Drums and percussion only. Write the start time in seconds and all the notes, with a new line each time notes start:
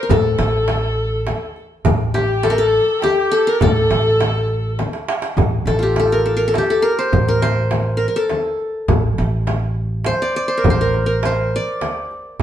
0.10 frame drum, darbuka dum
0.39 darbuka tek, frame drum
0.53 darbuka ka
0.68 darbuka tek, frame drum
1.27 darbuka tek, frame drum
1.56 darbuka ka
1.85 darbuka dum, frame drum
2.15 darbuka tek, frame drum
2.29 darbuka ka
2.43 darbuka tek, frame drum
3.02 darbuka tek, frame drum
3.32 darbuka ka
3.61 darbuka dum, frame drum
3.91 darbuka tek, frame drum
4.06 darbuka ka
4.21 darbuka tek, frame drum
4.35 darbuka ka
4.79 darbuka tek, frame drum
4.93 darbuka ka
5.09 darbuka tek
5.22 darbuka ka
5.37 frame drum, darbuka dum
5.67 darbuka tek, frame drum
5.96 darbuka tek, frame drum
6.54 darbuka tek, frame drum
6.84 darbuka ka
7.12 frame drum, darbuka dum
7.42 darbuka tek, frame drum
7.71 darbuka tek, frame drum
8.30 darbuka tek, frame drum
8.59 darbuka ka
8.88 frame drum, darbuka dum
9.18 darbuka tek
9.47 darbuka tek, frame drum
10.05 darbuka tek, frame drum
10.35 darbuka ka
10.64 darbuka dum, frame drum
10.94 frame drum
11.23 darbuka tek, frame drum
11.53 darbuka ka
11.81 darbuka tek, frame drum
12.11 darbuka ka